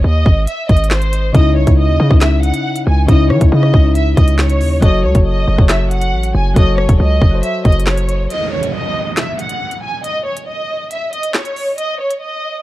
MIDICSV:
0, 0, Header, 1, 6, 480
1, 0, Start_track
1, 0, Tempo, 434783
1, 1486, Time_signature, 4, 2, 24, 8
1, 13934, End_track
2, 0, Start_track
2, 0, Title_t, "Violin section"
2, 0, Program_c, 0, 48
2, 47, Note_on_c, 0, 75, 93
2, 497, Note_off_c, 0, 75, 0
2, 521, Note_on_c, 0, 76, 94
2, 703, Note_off_c, 0, 76, 0
2, 762, Note_on_c, 0, 75, 92
2, 943, Note_off_c, 0, 75, 0
2, 1005, Note_on_c, 0, 72, 89
2, 1457, Note_off_c, 0, 72, 0
2, 1483, Note_on_c, 0, 75, 107
2, 1664, Note_off_c, 0, 75, 0
2, 1727, Note_on_c, 0, 73, 87
2, 1907, Note_off_c, 0, 73, 0
2, 1968, Note_on_c, 0, 75, 93
2, 2418, Note_off_c, 0, 75, 0
2, 2444, Note_on_c, 0, 76, 81
2, 2625, Note_off_c, 0, 76, 0
2, 2686, Note_on_c, 0, 78, 84
2, 3137, Note_off_c, 0, 78, 0
2, 3170, Note_on_c, 0, 80, 78
2, 3349, Note_off_c, 0, 80, 0
2, 3403, Note_on_c, 0, 75, 105
2, 3584, Note_off_c, 0, 75, 0
2, 3652, Note_on_c, 0, 73, 81
2, 3830, Note_off_c, 0, 73, 0
2, 3889, Note_on_c, 0, 75, 91
2, 4339, Note_off_c, 0, 75, 0
2, 4370, Note_on_c, 0, 76, 92
2, 4548, Note_off_c, 0, 76, 0
2, 4603, Note_on_c, 0, 75, 90
2, 4784, Note_off_c, 0, 75, 0
2, 4847, Note_on_c, 0, 73, 93
2, 5298, Note_off_c, 0, 73, 0
2, 5328, Note_on_c, 0, 75, 118
2, 5508, Note_off_c, 0, 75, 0
2, 5568, Note_on_c, 0, 73, 86
2, 5748, Note_off_c, 0, 73, 0
2, 5808, Note_on_c, 0, 75, 89
2, 6258, Note_off_c, 0, 75, 0
2, 6286, Note_on_c, 0, 76, 82
2, 6466, Note_off_c, 0, 76, 0
2, 6520, Note_on_c, 0, 78, 89
2, 6974, Note_off_c, 0, 78, 0
2, 7005, Note_on_c, 0, 80, 80
2, 7185, Note_off_c, 0, 80, 0
2, 7244, Note_on_c, 0, 75, 111
2, 7425, Note_off_c, 0, 75, 0
2, 7487, Note_on_c, 0, 73, 81
2, 7667, Note_off_c, 0, 73, 0
2, 7728, Note_on_c, 0, 75, 94
2, 8178, Note_off_c, 0, 75, 0
2, 8206, Note_on_c, 0, 76, 94
2, 8386, Note_off_c, 0, 76, 0
2, 8445, Note_on_c, 0, 75, 96
2, 8626, Note_off_c, 0, 75, 0
2, 8686, Note_on_c, 0, 73, 84
2, 9137, Note_off_c, 0, 73, 0
2, 9169, Note_on_c, 0, 75, 99
2, 9348, Note_off_c, 0, 75, 0
2, 9405, Note_on_c, 0, 73, 85
2, 9585, Note_off_c, 0, 73, 0
2, 9644, Note_on_c, 0, 75, 93
2, 10096, Note_off_c, 0, 75, 0
2, 10129, Note_on_c, 0, 76, 83
2, 10308, Note_off_c, 0, 76, 0
2, 10368, Note_on_c, 0, 78, 88
2, 10818, Note_off_c, 0, 78, 0
2, 10848, Note_on_c, 0, 80, 78
2, 11027, Note_off_c, 0, 80, 0
2, 11085, Note_on_c, 0, 75, 102
2, 11266, Note_off_c, 0, 75, 0
2, 11323, Note_on_c, 0, 73, 84
2, 11504, Note_off_c, 0, 73, 0
2, 11566, Note_on_c, 0, 75, 87
2, 12017, Note_off_c, 0, 75, 0
2, 12052, Note_on_c, 0, 76, 90
2, 12230, Note_off_c, 0, 76, 0
2, 12282, Note_on_c, 0, 75, 94
2, 12464, Note_off_c, 0, 75, 0
2, 12529, Note_on_c, 0, 73, 92
2, 12979, Note_off_c, 0, 73, 0
2, 12999, Note_on_c, 0, 75, 109
2, 13182, Note_off_c, 0, 75, 0
2, 13250, Note_on_c, 0, 73, 82
2, 13428, Note_off_c, 0, 73, 0
2, 13485, Note_on_c, 0, 75, 91
2, 13934, Note_off_c, 0, 75, 0
2, 13934, End_track
3, 0, Start_track
3, 0, Title_t, "Synth keys"
3, 0, Program_c, 1, 88
3, 1464, Note_on_c, 1, 49, 101
3, 1479, Note_on_c, 1, 61, 90
3, 1494, Note_on_c, 1, 63, 95
3, 1509, Note_on_c, 1, 64, 112
3, 1691, Control_c, 1, 64, 127
3, 2021, Note_off_c, 1, 49, 0
3, 2028, Note_off_c, 1, 61, 0
3, 2036, Note_off_c, 1, 63, 0
3, 2043, Note_off_c, 1, 64, 0
3, 2310, Note_on_c, 1, 49, 74
3, 2324, Note_on_c, 1, 61, 73
3, 2339, Note_on_c, 1, 63, 68
3, 2354, Note_on_c, 1, 64, 87
3, 2941, Note_off_c, 1, 49, 0
3, 2949, Note_off_c, 1, 61, 0
3, 2956, Note_off_c, 1, 63, 0
3, 2963, Note_off_c, 1, 64, 0
3, 3387, Note_on_c, 1, 49, 104
3, 3402, Note_on_c, 1, 61, 99
3, 3416, Note_on_c, 1, 63, 91
3, 3431, Note_on_c, 1, 64, 120
3, 3942, Note_off_c, 1, 49, 0
3, 3949, Note_off_c, 1, 61, 0
3, 3957, Note_off_c, 1, 63, 0
3, 3964, Note_off_c, 1, 64, 0
3, 4221, Note_on_c, 1, 49, 72
3, 4235, Note_on_c, 1, 61, 71
3, 4250, Note_on_c, 1, 63, 73
3, 4265, Note_on_c, 1, 64, 79
3, 4857, Note_off_c, 1, 49, 0
3, 4864, Note_off_c, 1, 61, 0
3, 4872, Note_off_c, 1, 63, 0
3, 4879, Note_off_c, 1, 64, 0
3, 5308, Note_on_c, 1, 54, 105
3, 5322, Note_on_c, 1, 66, 89
3, 5337, Note_on_c, 1, 69, 100
3, 5338, Control_c, 1, 64, 0
3, 5352, Note_on_c, 1, 73, 119
3, 5561, Control_c, 1, 64, 127
3, 5862, Note_off_c, 1, 54, 0
3, 5870, Note_off_c, 1, 66, 0
3, 5877, Note_off_c, 1, 69, 0
3, 5884, Note_off_c, 1, 73, 0
3, 6142, Note_on_c, 1, 54, 76
3, 6157, Note_on_c, 1, 66, 67
3, 6172, Note_on_c, 1, 69, 68
3, 6187, Note_on_c, 1, 73, 91
3, 6778, Note_off_c, 1, 54, 0
3, 6785, Note_off_c, 1, 66, 0
3, 6792, Note_off_c, 1, 69, 0
3, 6800, Note_off_c, 1, 73, 0
3, 7223, Note_on_c, 1, 54, 106
3, 7237, Note_on_c, 1, 66, 92
3, 7252, Note_on_c, 1, 69, 94
3, 7267, Note_on_c, 1, 73, 105
3, 7780, Note_off_c, 1, 54, 0
3, 7787, Note_off_c, 1, 66, 0
3, 7795, Note_off_c, 1, 69, 0
3, 7802, Note_off_c, 1, 73, 0
3, 8069, Note_on_c, 1, 54, 80
3, 8084, Note_on_c, 1, 66, 73
3, 8099, Note_on_c, 1, 69, 70
3, 8113, Note_on_c, 1, 72, 85
3, 8701, Note_off_c, 1, 54, 0
3, 8708, Note_off_c, 1, 66, 0
3, 8716, Note_off_c, 1, 69, 0
3, 8723, Note_off_c, 1, 72, 0
3, 9179, Control_c, 1, 64, 0
3, 13934, End_track
4, 0, Start_track
4, 0, Title_t, "808-style bass"
4, 0, Program_c, 2, 38
4, 46, Note_on_c, 2, 39, 110
4, 276, Note_off_c, 2, 39, 0
4, 286, Note_on_c, 2, 32, 105
4, 516, Note_off_c, 2, 32, 0
4, 766, Note_on_c, 2, 32, 109
4, 1457, Note_off_c, 2, 32, 0
4, 1485, Note_on_c, 2, 37, 107
4, 1725, Note_on_c, 2, 36, 105
4, 1742, Note_off_c, 2, 37, 0
4, 1839, Note_off_c, 2, 36, 0
4, 1846, Note_on_c, 2, 37, 109
4, 2086, Note_on_c, 2, 39, 99
4, 2102, Note_off_c, 2, 37, 0
4, 2200, Note_off_c, 2, 39, 0
4, 2206, Note_on_c, 2, 49, 104
4, 2321, Note_off_c, 2, 49, 0
4, 2325, Note_on_c, 2, 37, 102
4, 2786, Note_off_c, 2, 37, 0
4, 3166, Note_on_c, 2, 37, 107
4, 3396, Note_off_c, 2, 37, 0
4, 3406, Note_on_c, 2, 37, 105
4, 3646, Note_on_c, 2, 52, 102
4, 3663, Note_off_c, 2, 37, 0
4, 3760, Note_off_c, 2, 52, 0
4, 3766, Note_on_c, 2, 37, 106
4, 3881, Note_off_c, 2, 37, 0
4, 3886, Note_on_c, 2, 49, 106
4, 4116, Note_off_c, 2, 49, 0
4, 4126, Note_on_c, 2, 37, 101
4, 4587, Note_off_c, 2, 37, 0
4, 4606, Note_on_c, 2, 37, 110
4, 5086, Note_on_c, 2, 39, 102
4, 5103, Note_off_c, 2, 37, 0
4, 5314, Note_off_c, 2, 39, 0
4, 5325, Note_on_c, 2, 30, 107
4, 5566, Note_on_c, 2, 37, 103
4, 5583, Note_off_c, 2, 30, 0
4, 5680, Note_off_c, 2, 37, 0
4, 5685, Note_on_c, 2, 30, 102
4, 6031, Note_off_c, 2, 30, 0
4, 6046, Note_on_c, 2, 30, 100
4, 6161, Note_off_c, 2, 30, 0
4, 6166, Note_on_c, 2, 30, 112
4, 6765, Note_on_c, 2, 33, 102
4, 6782, Note_off_c, 2, 30, 0
4, 6993, Note_off_c, 2, 33, 0
4, 7006, Note_on_c, 2, 30, 106
4, 7236, Note_off_c, 2, 30, 0
4, 7246, Note_on_c, 2, 30, 115
4, 7591, Note_off_c, 2, 30, 0
4, 7606, Note_on_c, 2, 28, 108
4, 7721, Note_off_c, 2, 28, 0
4, 7727, Note_on_c, 2, 37, 108
4, 7957, Note_off_c, 2, 37, 0
4, 7966, Note_on_c, 2, 30, 101
4, 8196, Note_off_c, 2, 30, 0
4, 8446, Note_on_c, 2, 30, 107
4, 9137, Note_off_c, 2, 30, 0
4, 13934, End_track
5, 0, Start_track
5, 0, Title_t, "Downlifter"
5, 0, Program_c, 3, 103
5, 9165, Note_on_c, 3, 60, 86
5, 13005, Note_off_c, 3, 60, 0
5, 13934, End_track
6, 0, Start_track
6, 0, Title_t, "Drums"
6, 286, Note_on_c, 9, 36, 98
6, 396, Note_off_c, 9, 36, 0
6, 523, Note_on_c, 9, 42, 92
6, 633, Note_off_c, 9, 42, 0
6, 765, Note_on_c, 9, 42, 44
6, 766, Note_on_c, 9, 36, 90
6, 845, Note_off_c, 9, 42, 0
6, 845, Note_on_c, 9, 42, 58
6, 877, Note_off_c, 9, 36, 0
6, 925, Note_off_c, 9, 42, 0
6, 925, Note_on_c, 9, 42, 76
6, 1003, Note_on_c, 9, 39, 103
6, 1005, Note_on_c, 9, 38, 126
6, 1036, Note_off_c, 9, 42, 0
6, 1114, Note_off_c, 9, 39, 0
6, 1115, Note_off_c, 9, 38, 0
6, 1123, Note_on_c, 9, 42, 66
6, 1233, Note_off_c, 9, 42, 0
6, 1246, Note_on_c, 9, 42, 88
6, 1357, Note_off_c, 9, 42, 0
6, 1485, Note_on_c, 9, 36, 114
6, 1486, Note_on_c, 9, 42, 85
6, 1596, Note_off_c, 9, 36, 0
6, 1596, Note_off_c, 9, 42, 0
6, 1844, Note_on_c, 9, 42, 82
6, 1846, Note_on_c, 9, 36, 92
6, 1955, Note_off_c, 9, 42, 0
6, 1956, Note_off_c, 9, 36, 0
6, 2326, Note_on_c, 9, 36, 96
6, 2436, Note_off_c, 9, 36, 0
6, 2442, Note_on_c, 9, 42, 83
6, 2444, Note_on_c, 9, 39, 108
6, 2445, Note_on_c, 9, 38, 125
6, 2553, Note_off_c, 9, 42, 0
6, 2554, Note_off_c, 9, 39, 0
6, 2556, Note_off_c, 9, 38, 0
6, 2686, Note_on_c, 9, 42, 76
6, 2797, Note_off_c, 9, 42, 0
6, 2801, Note_on_c, 9, 42, 80
6, 2911, Note_off_c, 9, 42, 0
6, 3043, Note_on_c, 9, 42, 65
6, 3153, Note_off_c, 9, 42, 0
6, 3406, Note_on_c, 9, 36, 111
6, 3406, Note_on_c, 9, 42, 87
6, 3516, Note_off_c, 9, 36, 0
6, 3517, Note_off_c, 9, 42, 0
6, 3645, Note_on_c, 9, 37, 93
6, 3755, Note_off_c, 9, 37, 0
6, 3765, Note_on_c, 9, 42, 83
6, 3766, Note_on_c, 9, 36, 91
6, 3875, Note_off_c, 9, 42, 0
6, 3876, Note_off_c, 9, 36, 0
6, 4006, Note_on_c, 9, 37, 68
6, 4116, Note_off_c, 9, 37, 0
6, 4126, Note_on_c, 9, 36, 97
6, 4237, Note_off_c, 9, 36, 0
6, 4364, Note_on_c, 9, 42, 89
6, 4474, Note_off_c, 9, 42, 0
6, 4606, Note_on_c, 9, 36, 93
6, 4607, Note_on_c, 9, 42, 72
6, 4717, Note_off_c, 9, 36, 0
6, 4718, Note_off_c, 9, 42, 0
6, 4721, Note_on_c, 9, 42, 80
6, 4832, Note_off_c, 9, 42, 0
6, 4843, Note_on_c, 9, 39, 100
6, 4845, Note_on_c, 9, 38, 127
6, 4954, Note_off_c, 9, 39, 0
6, 4955, Note_off_c, 9, 38, 0
6, 4963, Note_on_c, 9, 42, 68
6, 5073, Note_off_c, 9, 42, 0
6, 5087, Note_on_c, 9, 46, 63
6, 5197, Note_off_c, 9, 46, 0
6, 5326, Note_on_c, 9, 36, 112
6, 5326, Note_on_c, 9, 42, 87
6, 5436, Note_off_c, 9, 36, 0
6, 5437, Note_off_c, 9, 42, 0
6, 5684, Note_on_c, 9, 42, 84
6, 5686, Note_on_c, 9, 36, 92
6, 5795, Note_off_c, 9, 42, 0
6, 5796, Note_off_c, 9, 36, 0
6, 6166, Note_on_c, 9, 36, 99
6, 6276, Note_off_c, 9, 36, 0
6, 6283, Note_on_c, 9, 42, 87
6, 6284, Note_on_c, 9, 39, 106
6, 6286, Note_on_c, 9, 38, 124
6, 6393, Note_off_c, 9, 42, 0
6, 6395, Note_off_c, 9, 39, 0
6, 6396, Note_off_c, 9, 38, 0
6, 6526, Note_on_c, 9, 42, 78
6, 6637, Note_off_c, 9, 42, 0
6, 6641, Note_on_c, 9, 42, 79
6, 6751, Note_off_c, 9, 42, 0
6, 6883, Note_on_c, 9, 42, 68
6, 6993, Note_off_c, 9, 42, 0
6, 7246, Note_on_c, 9, 36, 112
6, 7246, Note_on_c, 9, 42, 87
6, 7356, Note_off_c, 9, 36, 0
6, 7357, Note_off_c, 9, 42, 0
6, 7485, Note_on_c, 9, 37, 92
6, 7596, Note_off_c, 9, 37, 0
6, 7605, Note_on_c, 9, 42, 85
6, 7606, Note_on_c, 9, 36, 94
6, 7716, Note_off_c, 9, 42, 0
6, 7717, Note_off_c, 9, 36, 0
6, 7966, Note_on_c, 9, 36, 92
6, 8077, Note_off_c, 9, 36, 0
6, 8203, Note_on_c, 9, 42, 88
6, 8314, Note_off_c, 9, 42, 0
6, 8446, Note_on_c, 9, 42, 43
6, 8447, Note_on_c, 9, 36, 94
6, 8526, Note_off_c, 9, 42, 0
6, 8526, Note_on_c, 9, 42, 57
6, 8557, Note_off_c, 9, 36, 0
6, 8606, Note_off_c, 9, 42, 0
6, 8606, Note_on_c, 9, 42, 75
6, 8685, Note_on_c, 9, 39, 103
6, 8686, Note_on_c, 9, 38, 125
6, 8717, Note_off_c, 9, 42, 0
6, 8795, Note_off_c, 9, 39, 0
6, 8797, Note_off_c, 9, 38, 0
6, 8804, Note_on_c, 9, 42, 66
6, 8914, Note_off_c, 9, 42, 0
6, 8928, Note_on_c, 9, 42, 91
6, 9038, Note_off_c, 9, 42, 0
6, 9167, Note_on_c, 9, 42, 85
6, 9278, Note_off_c, 9, 42, 0
6, 9526, Note_on_c, 9, 42, 78
6, 9636, Note_off_c, 9, 42, 0
6, 10124, Note_on_c, 9, 42, 81
6, 10125, Note_on_c, 9, 39, 102
6, 10126, Note_on_c, 9, 38, 119
6, 10234, Note_off_c, 9, 42, 0
6, 10235, Note_off_c, 9, 39, 0
6, 10237, Note_off_c, 9, 38, 0
6, 10367, Note_on_c, 9, 42, 76
6, 10477, Note_off_c, 9, 42, 0
6, 10481, Note_on_c, 9, 42, 77
6, 10592, Note_off_c, 9, 42, 0
6, 10723, Note_on_c, 9, 42, 64
6, 10833, Note_off_c, 9, 42, 0
6, 11086, Note_on_c, 9, 42, 86
6, 11197, Note_off_c, 9, 42, 0
6, 11445, Note_on_c, 9, 42, 81
6, 11555, Note_off_c, 9, 42, 0
6, 12043, Note_on_c, 9, 42, 87
6, 12153, Note_off_c, 9, 42, 0
6, 12286, Note_on_c, 9, 42, 68
6, 12397, Note_off_c, 9, 42, 0
6, 12400, Note_on_c, 9, 42, 78
6, 12511, Note_off_c, 9, 42, 0
6, 12523, Note_on_c, 9, 39, 97
6, 12525, Note_on_c, 9, 38, 122
6, 12634, Note_off_c, 9, 39, 0
6, 12635, Note_off_c, 9, 38, 0
6, 12642, Note_on_c, 9, 42, 67
6, 12753, Note_off_c, 9, 42, 0
6, 12766, Note_on_c, 9, 46, 60
6, 12877, Note_off_c, 9, 46, 0
6, 13006, Note_on_c, 9, 42, 83
6, 13117, Note_off_c, 9, 42, 0
6, 13364, Note_on_c, 9, 42, 81
6, 13475, Note_off_c, 9, 42, 0
6, 13934, End_track
0, 0, End_of_file